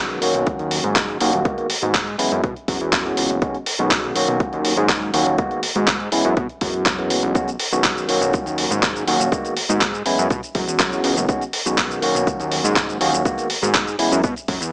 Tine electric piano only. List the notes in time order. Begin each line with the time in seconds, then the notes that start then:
Already playing: D#3 G#3 B3 C#4 F#4
0.21 D#3 F#3 A#3 C#4 F#4
1.20 D#3 F#3 A#3 C#4 F#4
1.45 D#3 G#3 A#3 B3 F#4
1.82 D#3 G#3 A#3 B3 F#4
2.18 E3 G#3 B3 C#4 E4
2.68 E3 G#3 B3 C#4 F#4
3.05 E3 G#3 B3 C#4 F#4
3.42 D#3 G#3 B3 C#4 F#4
3.79 D#3 G#3 B3 C#4 F#4
4.15 D#3 F#3 A#3 C#4 F#4
5.13 D#3 F#3 A#3 C#4 F#4
5.38 D#3 G#3 A#3 B3 F#4
5.75 D#3 G#3 A#3 B3 F#4
6.12 E3 G#3 B3 C#4 E4
6.61 E3 G#3 B3 C#4 F#4
6.98 E3 G#3 B3 C#4 F#4
7.35 D#3 G#3 B3 C#4 F#4
7.72 D#3 G#3 B3 C#4 F#4
8.08 D#3 F#3 A#3 C#4 F#4
9.07 D#3 F#3 A#3 C#4 F#4
9.31 D#3 G#3 A#3 B3 F#4
9.69 D#3 G#3 A#3 B3 F#4
10.05 E3 G#3 B3 C#4 E4
10.55 E3 G#3 B3 C#4 F#4
10.92 E3 G#3 B3 C#4 F#4
11.29 D#3 G#3 B3 C#4 F#4
11.66 D#3 G#3 B3 C#4 F#4
12.01 D#3 F#3 A#3 C#4 F#4
13.00 D#3 F#3 A#3 C#4 F#4
13.25 G#3 A#3 B3 F#4
13.62 D#3 G#3 A#3 B3 F#4
13.98 E3 G#3 B3 C#4 E4